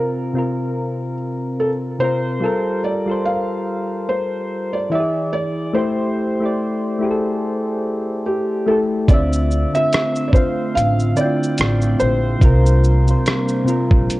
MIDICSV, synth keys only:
0, 0, Header, 1, 2, 480
1, 0, Start_track
1, 0, Key_signature, -1, "minor"
1, 0, Tempo, 833333
1, 1393, Time_signature, 4, 2, 24, 8
1, 8178, End_track
2, 0, Start_track
2, 0, Title_t, "Synth keys"
2, 0, Program_c, 0, 88
2, 0, Control_c, 0, 64, 127
2, 0, Note_on_c, 0, 48, 70
2, 0, Note_on_c, 0, 60, 68
2, 0, Note_on_c, 0, 65, 71
2, 0, Note_on_c, 0, 70, 78
2, 164, Note_off_c, 0, 48, 0
2, 168, Note_off_c, 0, 60, 0
2, 174, Note_off_c, 0, 65, 0
2, 179, Note_off_c, 0, 70, 0
2, 193, Note_on_c, 0, 48, 79
2, 202, Note_on_c, 0, 60, 72
2, 211, Note_on_c, 0, 65, 69
2, 222, Note_on_c, 0, 70, 78
2, 1079, Note_off_c, 0, 48, 0
2, 1084, Note_off_c, 0, 60, 0
2, 1088, Note_off_c, 0, 65, 0
2, 1093, Note_off_c, 0, 70, 0
2, 1145, Note_on_c, 0, 48, 74
2, 1155, Note_on_c, 0, 60, 74
2, 1165, Note_on_c, 0, 65, 62
2, 1176, Note_on_c, 0, 70, 82
2, 1371, Note_off_c, 0, 48, 0
2, 1376, Note_off_c, 0, 60, 0
2, 1381, Note_off_c, 0, 65, 0
2, 1382, Note_on_c, 0, 55, 81
2, 1386, Note_off_c, 0, 70, 0
2, 1393, Note_on_c, 0, 65, 79
2, 1400, Control_c, 0, 64, 0
2, 1402, Note_on_c, 0, 69, 97
2, 1412, Note_on_c, 0, 70, 98
2, 1506, Control_c, 0, 64, 127
2, 1728, Note_off_c, 0, 55, 0
2, 1733, Note_off_c, 0, 65, 0
2, 1737, Note_off_c, 0, 69, 0
2, 1743, Note_off_c, 0, 70, 0
2, 1761, Note_on_c, 0, 55, 78
2, 1771, Note_on_c, 0, 65, 72
2, 1782, Note_on_c, 0, 69, 75
2, 1792, Note_on_c, 0, 72, 85
2, 2628, Note_off_c, 0, 55, 0
2, 2633, Note_off_c, 0, 65, 0
2, 2639, Note_off_c, 0, 69, 0
2, 2644, Note_off_c, 0, 72, 0
2, 2823, Note_on_c, 0, 52, 77
2, 2833, Note_on_c, 0, 64, 68
2, 2841, Control_c, 0, 64, 0
2, 2843, Note_on_c, 0, 67, 55
2, 2854, Note_on_c, 0, 74, 89
2, 2881, Note_off_c, 0, 67, 0
2, 2881, Note_on_c, 0, 68, 69
2, 2951, Control_c, 0, 64, 127
2, 3271, Note_off_c, 0, 52, 0
2, 3276, Note_off_c, 0, 64, 0
2, 3287, Note_off_c, 0, 74, 0
2, 3300, Note_off_c, 0, 68, 0
2, 3301, Note_on_c, 0, 57, 93
2, 3312, Note_on_c, 0, 64, 85
2, 3321, Control_c, 0, 64, 0
2, 3322, Note_on_c, 0, 67, 88
2, 3332, Note_on_c, 0, 72, 98
2, 3406, Control_c, 0, 64, 127
2, 3647, Note_off_c, 0, 57, 0
2, 3653, Note_off_c, 0, 64, 0
2, 3657, Note_off_c, 0, 67, 0
2, 3662, Note_off_c, 0, 72, 0
2, 3688, Note_on_c, 0, 57, 80
2, 3699, Note_on_c, 0, 64, 63
2, 3708, Note_on_c, 0, 67, 69
2, 3718, Note_on_c, 0, 74, 75
2, 4005, Note_off_c, 0, 57, 0
2, 4010, Note_off_c, 0, 64, 0
2, 4015, Note_off_c, 0, 67, 0
2, 4020, Note_off_c, 0, 74, 0
2, 4026, Note_on_c, 0, 57, 75
2, 4038, Note_on_c, 0, 64, 68
2, 4047, Note_on_c, 0, 67, 77
2, 4056, Note_on_c, 0, 68, 70
2, 4087, Note_off_c, 0, 68, 0
2, 4094, Note_on_c, 0, 69, 84
2, 4916, Note_off_c, 0, 57, 0
2, 4922, Note_off_c, 0, 64, 0
2, 4926, Note_off_c, 0, 67, 0
2, 4950, Note_off_c, 0, 69, 0
2, 4990, Note_on_c, 0, 57, 81
2, 5000, Note_on_c, 0, 64, 66
2, 5009, Note_on_c, 0, 67, 72
2, 5019, Note_on_c, 0, 69, 75
2, 5213, Note_off_c, 0, 57, 0
2, 5218, Note_off_c, 0, 64, 0
2, 5223, Note_off_c, 0, 67, 0
2, 5228, Note_off_c, 0, 69, 0
2, 5232, Note_on_c, 0, 50, 88
2, 5240, Note_on_c, 0, 60, 75
2, 5242, Control_c, 0, 64, 0
2, 5251, Note_on_c, 0, 65, 70
2, 5262, Note_on_c, 0, 76, 92
2, 5336, Control_c, 0, 64, 127
2, 5573, Note_off_c, 0, 50, 0
2, 5576, Note_off_c, 0, 60, 0
2, 5582, Note_off_c, 0, 65, 0
2, 5588, Note_off_c, 0, 76, 0
2, 5606, Note_on_c, 0, 50, 70
2, 5616, Note_on_c, 0, 60, 66
2, 5627, Note_on_c, 0, 65, 61
2, 5636, Note_on_c, 0, 76, 76
2, 5924, Note_off_c, 0, 50, 0
2, 5929, Note_off_c, 0, 60, 0
2, 5934, Note_off_c, 0, 65, 0
2, 5939, Note_off_c, 0, 76, 0
2, 5942, Note_on_c, 0, 50, 65
2, 5951, Note_on_c, 0, 60, 67
2, 5962, Note_on_c, 0, 65, 68
2, 5971, Note_on_c, 0, 77, 75
2, 6391, Note_off_c, 0, 50, 0
2, 6395, Note_off_c, 0, 60, 0
2, 6401, Note_off_c, 0, 65, 0
2, 6405, Note_off_c, 0, 77, 0
2, 6424, Note_on_c, 0, 50, 70
2, 6434, Note_on_c, 0, 60, 62
2, 6443, Note_on_c, 0, 64, 56
2, 6455, Note_on_c, 0, 79, 74
2, 6481, Note_off_c, 0, 64, 0
2, 6482, Note_on_c, 0, 65, 70
2, 7093, Note_off_c, 0, 50, 0
2, 7098, Note_off_c, 0, 60, 0
2, 7109, Note_off_c, 0, 79, 0
2, 7122, Note_off_c, 0, 65, 0
2, 7140, Note_on_c, 0, 48, 86
2, 7150, Note_on_c, 0, 60, 82
2, 7160, Control_c, 0, 64, 0
2, 7160, Note_on_c, 0, 65, 89
2, 7170, Note_on_c, 0, 70, 99
2, 7250, Control_c, 0, 64, 127
2, 7487, Note_off_c, 0, 48, 0
2, 7491, Note_off_c, 0, 60, 0
2, 7497, Note_off_c, 0, 65, 0
2, 7502, Note_off_c, 0, 70, 0
2, 7518, Note_on_c, 0, 48, 72
2, 7530, Note_on_c, 0, 60, 64
2, 7540, Note_on_c, 0, 65, 61
2, 7549, Note_on_c, 0, 72, 79
2, 7840, Note_off_c, 0, 48, 0
2, 7846, Note_off_c, 0, 60, 0
2, 7851, Note_off_c, 0, 65, 0
2, 7856, Note_off_c, 0, 72, 0
2, 7858, Note_on_c, 0, 48, 82
2, 7869, Note_on_c, 0, 60, 83
2, 7877, Note_on_c, 0, 65, 82
2, 7889, Note_on_c, 0, 70, 87
2, 8178, Note_off_c, 0, 48, 0
2, 8178, Note_off_c, 0, 60, 0
2, 8178, Note_off_c, 0, 65, 0
2, 8178, Note_off_c, 0, 70, 0
2, 8178, End_track
0, 0, End_of_file